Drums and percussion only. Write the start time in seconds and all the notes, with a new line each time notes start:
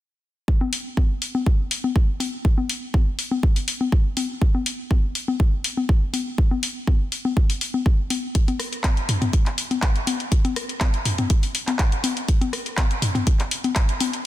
0.48 kick
0.61 high conga
0.73 open hi-hat
0.97 kick, high conga
1.22 open hi-hat
1.35 high conga
1.46 kick
1.71 open hi-hat
1.84 high conga
1.96 kick
2.20 open hi-hat, high conga
2.45 kick
2.58 high conga
2.69 open hi-hat
2.94 kick, high conga
3.19 open hi-hat
3.31 high conga
3.43 kick
3.56 open hi-hat
3.68 open hi-hat
3.81 high conga
3.92 kick
4.17 open hi-hat, high conga
4.42 kick
4.55 high conga
4.66 open hi-hat
4.91 kick, high conga
5.15 open hi-hat
5.28 high conga
5.40 kick
5.64 open hi-hat
5.77 high conga
5.89 kick
6.13 open hi-hat, high conga
6.38 kick
6.51 high conga
6.63 open hi-hat
6.87 kick, high conga
7.12 open hi-hat
7.25 high conga
7.37 kick
7.50 open hi-hat
7.61 open hi-hat
7.74 high conga
7.86 kick
8.10 open hi-hat, high conga
8.35 kick, closed hi-hat
8.48 closed hi-hat, high conga
8.59 cross-stick, open hi-hat
8.73 closed hi-hat
8.84 kick, clap, closed hi-hat, high conga
8.97 closed hi-hat
9.09 mid tom, open hi-hat
9.22 closed hi-hat, mid tom, high conga
9.33 kick, closed hi-hat
9.46 clap, closed hi-hat
9.58 open hi-hat
9.71 closed hi-hat, high conga
9.82 kick, clap, closed hi-hat
9.96 closed hi-hat
10.07 open hi-hat, high conga
10.20 closed hi-hat
10.32 kick, closed hi-hat
10.45 closed hi-hat, high conga
10.56 cross-stick, open hi-hat
10.69 closed hi-hat
10.81 kick, clap, closed hi-hat, high conga
10.94 closed hi-hat
11.05 mid tom, open hi-hat
11.18 closed hi-hat, mid tom, high conga
11.30 kick, closed hi-hat
11.43 open hi-hat
11.55 open hi-hat
11.67 clap, closed hi-hat, high conga
11.79 kick, clap, closed hi-hat
11.92 closed hi-hat
12.04 open hi-hat, high conga
12.17 closed hi-hat
12.28 kick, closed hi-hat
12.41 closed hi-hat, high conga
12.53 cross-stick, open hi-hat
12.66 closed hi-hat
12.77 kick, clap, closed hi-hat, high conga
12.91 closed hi-hat
13.02 mid tom, open hi-hat
13.15 closed hi-hat, mid tom, high conga
13.27 kick, closed hi-hat
13.39 clap, closed hi-hat
13.51 open hi-hat
13.64 closed hi-hat, high conga
13.76 kick, clap, closed hi-hat
13.89 closed hi-hat
14.00 open hi-hat, high conga
14.13 closed hi-hat